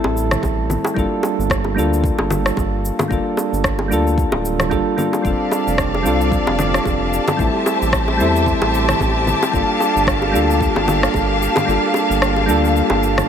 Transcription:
Already playing: synth keys G3 A3 C4 E4 A4
0.04 analog synth bass A1, high bongo
0.17 shaker
0.31 cross-stick, low conga, shaker
0.43 analog synth bass A1, kick, high bongo, shaker
0.70 low conga, shaker
0.84 high bongo, shaker
0.94 analog synth bass G1, synth keys G3 A#3 D4 F4, kick
0.98 synth keys A4, shaker
1.23 high bongo, shaker
1.38 analog synth bass G1, shaker
1.50 kick, cross-stick, shaker
1.64 high bongo
1.75 analog synth bass D2, synth keys G3 A#3 D4 F4, shaker
1.79 synth keys A4
1.93 shaker
2.04 kick, shaker
2.18 analog synth bass G1, high bongo
2.31 low conga, shaker
2.46 cross-stick, shaker
2.57 analog synth bass G1, kick, high bongo, shaker
2.85 shaker
2.99 high bongo, low conga, shaker
3.08 analog synth bass G1, synth keys G3 A#3 D4 F4, kick, shaker
3.13 synth keys A4
3.37 high bongo, shaker
3.52 analog synth bass G1, shaker
3.64 kick, cross-stick, shaker
3.79 high bongo
3.88 analog synth bass D2, synth keys G3 A#3 D4, shaker
3.92 synth keys F4 A4
4.07 shaker
4.18 kick, shaker
4.32 analog synth bass D1, high bongo
4.45 shaker
4.60 cross-stick, low conga, shaker
4.70 analog synth bass G1, synth keys G3 A#3 D4 F4 A4, kick, high bongo, shaker
4.96 synth keys G3 A#3 D4 F4 A4, low conga, shaker
5.13 high bongo, shaker
5.22 analog synth bass F1, synth keys G3 C4 D4 F4, string section G4 D5 F5 A5, kick, shaker
5.27 synth keys A4
5.52 high bongo, shaker
5.67 analog synth bass F1, shaker
5.78 kick, cross-stick, shaker
5.94 high bongo
6.03 analog synth bass C2, synth keys G3 C4 D4 F4, shaker
6.08 synth keys A4
6.21 shaker
6.32 kick, shaker
6.47 analog synth bass F1, high bongo
6.59 low conga, shaker
6.74 cross-stick, shaker
6.85 analog synth bass F1, kick, high bongo, shaker
7.13 shaker
7.28 high bongo, low conga, shaker
7.37 analog synth bass A1, synth keys G3 A3 C4 E4, string section C5 E5, kick, shaker
7.42 synth keys A4
7.66 high bongo, shaker
7.82 analog synth bass A1, shaker
7.93 kick, cross-stick, shaker
8.08 high bongo
8.17 analog synth bass E2, synth keys G3 A3 C4 E4, shaker
8.22 synth keys A4
8.36 shaker
8.46 kick, shaker
8.62 analog synth bass A1, high bongo
8.74 shaker
8.89 cross-stick, low conga, shaker
9.00 analog synth bass A1, kick, high bongo, shaker
9.27 low conga, shaker
9.43 high bongo, shaker
9.52 analog synth bass G1, synth keys G3 A#3 D4 F4, string section A#3 F5, kick, shaker
9.56 synth keys A4
9.80 high bongo, shaker
9.96 analog synth bass G1, shaker
10.07 kick, cross-stick, shaker
10.22 high bongo
10.31 analog synth bass D2, synth keys G3 A#3 D4 F4
10.36 synth keys A4, shaker
10.51 shaker
10.61 kick, shaker
10.76 analog synth bass G1, high bongo
10.88 low conga, shaker
11.03 cross-stick, shaker
11.14 analog synth bass G1, kick, high bongo, shaker
11.42 shaker
11.56 high bongo, low conga, shaker
11.65 analog synth bass G1, synth keys G3 A#3 D4 F4, shaker
11.70 synth keys A4
11.94 high bongo, shaker
12.10 analog synth bass G1, shaker
12.22 cross-stick, shaker
12.36 high bongo
12.46 analog synth bass D2, synth keys G3 A#3 D4 F4, shaker
12.51 synth keys A4
12.65 shaker
12.76 shaker
12.90 analog synth bass G1, high bongo
13.03 shaker
13.18 cross-stick, low conga, shaker

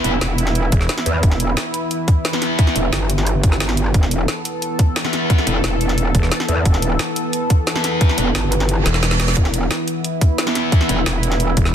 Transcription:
Already playing: analog synth pad E3 B3 E4
0.04 wobble bass E1, distorted electric guitar B3 E4 B4, closed hi-hat
0.21 wobble bass E1, snare, closed hi-hat
0.38 closed hi-hat
0.47 snare
0.55 closed hi-hat
0.72 fm bass E1, kick, closed hi-hat
0.81 snare
0.89 snare, closed hi-hat
0.98 snare
1.06 wobble bass E2, closed hi-hat
1.23 wobble bass E1, kick, closed hi-hat
1.32 snare
1.40 closed hi-hat
1.57 snare, closed hi-hat
1.74 closed hi-hat
1.91 closed hi-hat
2.08 kick, closed hi-hat
2.25 snare, closed hi-hat
2.33 distorted electric guitar B3 E4 B4, snare
2.42 snare, closed hi-hat
2.59 kick, closed hi-hat
2.67 snare
2.76 wobble bass E1, closed hi-hat
2.93 wobble bass G1, snare, closed hi-hat
3.10 closed hi-hat
3.18 snare
3.27 closed hi-hat
3.43 wobble bass G1, kick, closed hi-hat
3.52 snare
3.60 snare, closed hi-hat
3.69 snare
3.77 closed hi-hat
3.94 wobble bass E1, analog synth pad A4, kick, closed hi-hat
4.03 snare
4.11 closed hi-hat
4.28 snare, closed hi-hat
4.45 closed hi-hat
4.62 closed hi-hat
4.79 kick, closed hi-hat
4.96 snare, closed hi-hat
5.04 distorted electric guitar B3 E4 B4, snare
5.13 snare, closed hi-hat
5.30 kick, closed hi-hat
5.38 snare
5.47 wobble bass E1, distorted electric guitar B3 E4 B4, closed hi-hat
5.64 wobble bass E1, snare, closed hi-hat
5.81 closed hi-hat
5.89 snare
5.98 closed hi-hat
6.15 fm bass E1, kick, closed hi-hat
6.23 snare
6.32 snare, closed hi-hat
6.40 snare
6.48 wobble bass E2, closed hi-hat
6.65 wobble bass E1, kick, closed hi-hat
6.74 snare
6.82 closed hi-hat
6.99 snare, closed hi-hat
7.16 closed hi-hat
7.33 closed hi-hat
7.50 kick, closed hi-hat
7.67 snare, closed hi-hat
7.75 distorted electric guitar B3 E4 B4, snare
7.84 snare, closed hi-hat
8.01 kick, closed hi-hat
8.09 snare
8.18 wobble bass E1, distorted electric guitar B3 E4 B4, closed hi-hat
8.35 wobble bass G1, snare, closed hi-hat
8.52 closed hi-hat
8.60 snare
8.69 closed hi-hat, reverse cymbal
8.86 fm bass E1, snare, closed hi-hat
8.94 snare
9.03 snare, closed hi-hat
9.11 snare
9.20 snare, closed hi-hat
9.28 snare
9.37 wobble bass E1, analog synth pad E4, kick, closed hi-hat
9.45 snare
9.54 closed hi-hat
9.71 snare, closed hi-hat
9.88 closed hi-hat
10.04 closed hi-hat
10.21 kick, closed hi-hat
10.38 snare, closed hi-hat
10.47 distorted electric guitar B3 E4 B4, snare
10.55 snare, closed hi-hat
10.72 kick, closed hi-hat
10.81 snare
10.89 wobble bass E1, distorted electric guitar B3 E4 B4, closed hi-hat
11.06 wobble bass E1, snare, closed hi-hat
11.23 closed hi-hat
11.32 snare
11.40 closed hi-hat
11.57 fm bass E1, kick, closed hi-hat
11.65 snare

